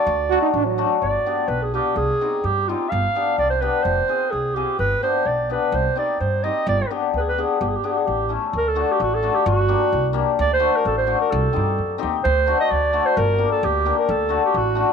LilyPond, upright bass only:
\new Staff \with { instrumentName = "Upright bass" } { \clef bass \time 2/4 \tempo 4 = 128 d,4 a,,4 | g,,8 r8 b,,4 | c,8 r8 g,4 | g,,8 r8 c,4 |
f,,8 r8 c,4 | g,,8 r8 b,,4 | c,8 r8 g,4 | g,,8 r8 d,4 |
g,,8 r8 a,,4 | d,4 a,,4 | g,,4 c,4 | d,4 a,,4 |
c,8 g,8 fis,8 ees,8 | d,4 d,4 | g,,4 d,4 | d,4 a,,4 | }